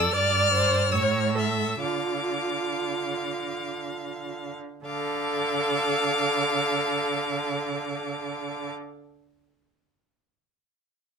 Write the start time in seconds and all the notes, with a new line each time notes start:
Already playing: F2 A4 D5 E6
0.12 G2 D5 F6
0.52 C5
0.92 A2 C#5 E6
1.02 F6
1.11 E6
1.20 F6
1.30 E6
1.36 A4 E5 F6
1.49 E6
1.82 D3 F4 F5 D6
4.85 D3 A4 F5 D6